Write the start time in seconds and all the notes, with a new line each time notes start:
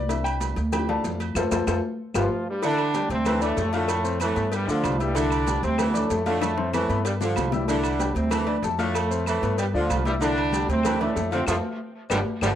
Already playing: C2
0.09 E3 C4 D4 E5, cowbell, high conga, low agogo, maracas
0.24 G5, high conga, low agogo, claves, maracas
0.40 cowbell, high conga, low timbale, low agogo, maracas
0.56 D2, cowbell, high conga, maracas
0.72 E3 F3 C4 G4 G5, cowbell, high conga, low conga, low agogo, claves, maracas
0.89 A4 D5 F5 A5, cowbell, high conga, low conga, low agogo
1.04 F2, cowbell, high conga, low timbale, maracas
1.20 cowbell, low agogo, maracas
1.35 F2 F4 A4 C5, cowbell, high conga, high timbale, claves, maracas
1.51 F2 F4 A4 C5, cowbell, high conga, high timbale, claves, maracas
1.67 F2 F4 A4 C5, cowbell, high conga, high timbale, claves, maracas
2.14 G1 F3 F4 G4 B4, cowbell, high conga, high timbale, claves, maracas
2.49 G2 G3
2.62 D3 E3 D4 E4 E5, cowbell, high conga, low agogo, maracas
2.77 high conga, low agogo, claves
2.94 G3 G4 G5, cowbell, high conga, low timbale, low agogo, maracas
3.09 D2 C3 C4, cowbell, high conga, maracas
3.25 E3 A3 A4 A5, cowbell, high conga, low conga, low agogo, claves, maracas
3.41 A2 A3 D4 D5 D6, cowbell, high conga, low agogo, maracas
3.56 F2 A3 A4 A5, cowbell, high conga, low timbale, maracas
3.73 A2 D3 A3 F4 F5 F6, cowbell, low agogo, maracas
3.88 cowbell, high conga, low agogo, claves, maracas
4.04 C4 C5 C6, high conga, maracas
4.20 A2 E3 A3, cowbell, high conga, low timbale, low agogo, claves, maracas
4.36 G2 B3 B4 B5, cowbell, high conga, maracas
4.52 G2 G3, cowbell, high conga, low agogo, maracas
4.67 D2 D3 F3 D4 F4 D5 D6, high conga, maracas
4.83 C2, cowbell, high conga, low timbale, low agogo, claves, maracas
5.00 G2 G3 E4 E5 E6, cowbell, high conga, maracas
5.15 D3 E3 D4 E4 E5, cowbell, high conga, low agogo, maracas
5.31 high conga, low agogo, claves, maracas
5.46 G3 G4 G5, cowbell, high conga, low timbale, low agogo, maracas
5.63 D2 C3 C4, cowbell, high conga, maracas
5.78 E3 A3 A4 A5, cowbell, high conga, low conga, low agogo, claves, maracas
5.88 B3
5.94 A2 A3 D4 D5 D6, cowbell, high conga, low conga, low agogo, maracas
6.10 F2 A3 A4 A5, cowbell, high conga, low timbale, maracas
6.26 A2 D3 A3 F4 F5 F6, cowbell, high conga, low agogo, maracas
6.42 cowbell, high bongo, high conga, low agogo, claves, maracas
6.58 C4 C5 C6, high bongo
6.74 A2 E3 A3, cowbell, low bongo, high conga, low timbale, low agogo, claves, maracas
6.89 G2 B3 B4 B5, cowbell, high conga, maracas
7.05 G2 G3, cowbell, high conga, low agogo, maracas
7.21 D3 F3 D4 F4 D5 D6, low bongo, high conga, maracas
7.36 C2, cowbell, low bongo, high conga, low timbale, low agogo, claves, maracas
7.52 G2 G3 E4 E5 E6, cowbell, low bongo, high conga, maracas
7.68 D3 E3 D4 E4 E5, cowbell, high conga, low agogo, maracas
7.84 high conga, low agogo, claves, maracas
8.00 G3 G4 G5, cowbell, high conga, low timbale, low agogo, maracas
8.15 D2 C3 C4, cowbell, high conga, maracas
8.31 E3 A3 A4 A5, cowbell, high conga, low conga, low agogo, claves, maracas
8.47 D4 D5 D6, cowbell, high conga, low agogo
8.62 F2 A3 A4 A5, cowbell, high conga, low timbale, maracas
8.79 A2 D3 A3 F4 F5 F6, cowbell, high conga, low agogo, maracas
8.95 cowbell, high conga, low agogo, claves, maracas
9.11 C4 C5 C6, high conga, maracas
9.26 A2 E3 A3, cowbell, high conga, low timbale, low agogo, claves, maracas
9.42 G2 B3 B4 B5, cowbell, high conga, maracas
9.58 G2 G3, cowbell, high conga, low agogo, maracas
9.73 D2 D3 F3 D4 F4 D5 D6, high conga
9.89 C2, cowbell, high conga, low timbale, low agogo, claves, maracas
10.05 G2 G3 E4 E5 E6, cowbell, high conga, maracas
10.21 D3 E3 D4 E4 E5, cowbell, high conga, low agogo, maracas
10.37 low agogo, claves
10.52 G3 G4 G5, cowbell, high conga, low timbale, low agogo, maracas
10.68 D2 C3 C4, cowbell, high conga, maracas
10.83 E3 A3 A4 A5, cowbell, high conga, low conga, low agogo, claves, maracas
11.00 A2 A3 D4 D5 D6, cowbell, high conga, low conga, low agogo
11.16 F2 A3 A4 A5, cowbell, high conga, low timbale, maracas
11.31 C3 D3 C4 F4 F5 F6, cowbell, low agogo, maracas
11.47 F2 A2 C3 F3 A3 A4 C5 F5, cowbell, high conga, high timbale, claves, maracas
12.10 G1 D3 F3 G3 G4 B4 D5, cowbell, high conga, high timbale, claves, maracas
12.41 G1 D3 F3 G3 G4 B4 D5, cowbell, high conga, high timbale, claves, maracas